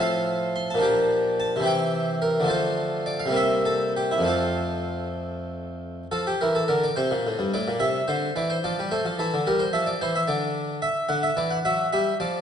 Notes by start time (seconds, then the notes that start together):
Already playing: A2 F3 C4
0.00 F4 F5
0.56 C6
0.70 A5
0.75 A#2 F3
0.79 D4 G4
0.85 A#5
1.40 A5
1.56 C3 E3
1.62 C4 G4
1.67 G5
2.22 A#4
2.40 D3 F3
2.45 A3 F4
2.50 C5
3.06 D5
3.19 F5
3.26 C3 G3
3.31 A#3 C4
3.36 E5
3.65 A4
3.97 G4
4.11 E4
4.18 F2 F3
4.24 A3 C4
4.28 F4
6.11 F3 A4
6.27 G4
6.41 E3 A#4
6.55 A4
6.68 D3 A#4
6.84 D5
6.96 C3 C5
7.11 A#2
7.27 A2
7.39 G2
7.54 A2 D5
7.68 A#2
7.80 C3 E5
8.08 D3 C5
8.36 E3 D5
8.50 C5
8.64 F3 D5
8.79 G3
8.91 A3 C5
9.05 F3
9.19 E3 A4
9.34 D3
9.47 G3 A#4
9.59 C5
9.73 F3 E5
9.86 D5
10.01 E3 C5
10.15 E5
10.28 D3 D5
10.82 E5
11.09 D3 F#5
11.23 E5
11.37 E3 D5
11.51 F#5
11.65 F#3 E5
11.93 G3 E5
12.20 F3 D5